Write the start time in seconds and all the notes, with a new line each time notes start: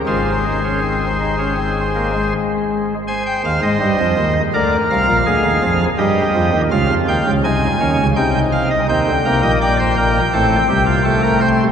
0.07 G#1 G#2 F4 G#4 C5
0.44 D#4
0.64 C#4
0.83 C4
1.20 D#4
1.38 C#4
1.58 C4
1.96 A#3
2.14 G#3
3.08 C5 G#5
3.26 G5
3.44 D#2 D#3 F5
3.62 G#2 G#3 D#5
3.80 G2 G3
3.99 F2 F3
4.18 D#2 D#3
4.53 D2 D3 A#4 D5
4.91 C2 C3 F5
5.08 A#1 A#2
5.26 D2 D3 G#4
5.44 D#2 D#3
5.63 F2 F3
5.98 G2 G3 G4 D#5
6.34 F2 F3
6.53 D#2 D#3
6.71 C#2 C#3 F4 F5
6.90 F2 F3
7.08 D#2 D#3 G5
7.26 C#2 C#3
7.44 C2 C3 D#4 G#5
7.80 D#2 D#3 C#4
7.98 C#2 C#3
8.16 C2 C3 D#4 G5
8.52 F5
8.71 D#5
8.88 D#2 D#3 C4 D#4 G5
9.07 D2 D3
9.25 C2 C3 A#3 A#4
9.42 A#1 A#2 D#5
9.61 D5 G5
9.79 C5
9.97 A#4
10.33 A1 A2 C4 A4
10.68 C2 C3 G4
10.86 F4
11.04 A3 A4
11.22 A#4
11.40 C5